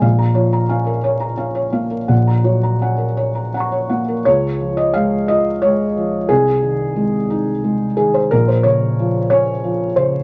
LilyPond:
<<
  \new Staff \with { instrumentName = "Felt piano" } { \time 6/8 \key des \major \tempo 4. = 59 << { r2. | r2 <bes'' des'''>4 | des''8. ees''16 f''8 ees''8 des''4 | aes'2~ aes'8 aes'16 c''16 |
bes'16 c''16 des''4 des''4 c''8 | } \\ { f''16 bes''16 des''16 bes''16 f''16 bes'16 des''16 bes''16 f''16 des''16 f''16 bes'16 | ges''16 bes''16 des''16 bes''16 ges''16 bes'16 des''16 bes''16 ges''16 des''16 ges''16 bes'16 | r2. | r2. |
r2. | } >> }
  \new Staff \with { instrumentName = "Felt piano" } { \clef bass \time 6/8 \key des \major bes,,8 f8 des'4 des'8 bes8 | bes,,8 ges8 des'4 des'8 bes8 | des,8 f8 aes8 f'8 aes8 f8 | c,8 ees8 aes8 ees'8 aes8 ees8 |
bes,,8 des8 f8 des'8 f8 des8 | }
>>